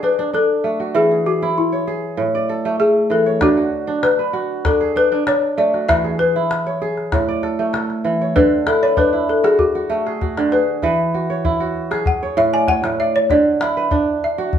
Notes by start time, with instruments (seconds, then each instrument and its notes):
Already playing: kora D3 F#4 G#4 B4
0.03 kora D4, balafon B4
0.19 kora D4
0.33 kora D4, balafon A4
0.64 kora A3
0.80 kora F#4
0.95 kora E3, balafon G#4
1.11 kora G#4
1.26 balafon F#4, kora G#4
1.42 kora E4
1.58 balafon E4
1.72 kora C#5
1.87 kora G#4
2.17 kora A2
2.35 kora D5
2.49 kora A4
2.65 kora A3
2.80 kora A3, balafon G#4
3.10 kora E3, balafon A4
3.26 kora C#5
3.41 kora D3, balafon F#4, calabash thump, calabash click
3.57 kora F#4
3.87 kora D4
4.03 balafon B4, calabash click
4.19 kora B4
4.33 kora F#4, calabash click
4.65 kora D4, balafon A4, calabash thump, calabash click
4.81 kora G#4
4.96 kora D4, balafon B4
5.12 kora D4, calabash click
5.27 kora D4, balafon C#5, calabash click
5.58 kora A3, balafon D5
5.74 kora F#4, calabash click
5.88 kora E3, balafon E5, calabash thump, calabash click
6.04 kora G#4
6.19 kora G#4, balafon B4
6.36 kora E4
6.51 calabash click
6.66 kora C#5
6.82 kora G#4
6.97 calabash click
7.12 kora A2, calabash thump, calabash click
7.28 kora D5
7.43 kora A4, calabash click
7.59 kora A3
7.73 kora A4, calabash click
7.90 calabash click
8.04 kora E3, calabash click
8.21 kora C#5
8.36 kora D3 A4, balafon B4, calabash thump, calabash click
8.67 kora E4, balafon A4, calabash click
8.82 kora B4, balafon C#5
8.97 kora D4, balafon B4, calabash thump
9.13 kora E4
9.29 balafon A4
9.44 kora F#4, balafon G#4, calabash click
9.59 balafon F#4, calabash thump
9.75 kora F#4
9.90 kora A3
10.06 kora G#4, calabash click
10.21 kora F#4, calabash thump, calabash click
10.37 kora D3, calabash click
10.52 kora G#4, balafon B4
10.82 kora E3 B4, calabash thump, calabash click
11.14 kora F#4
11.30 kora C#5
11.45 kora E4, calabash thump
11.60 kora F#4
11.91 kora G#4, calabash click
12.06 balafon F#5, calabash thump
12.23 kora C#5
12.37 kora A2, balafon E5
12.53 kora D5, balafon G#5, calabash click
12.68 kora C#5, balafon F#5, calabash thump, calabash click
12.84 kora A2, calabash click
13.00 kora D5, balafon E5
13.16 balafon C#5
13.30 kora D3, balafon D5, calabash thump, calabash click
13.61 kora E4, calabash click
13.77 kora B4
13.91 kora D4, calabash thump
14.24 balafon E5
14.38 kora F#4
14.53 calabash thump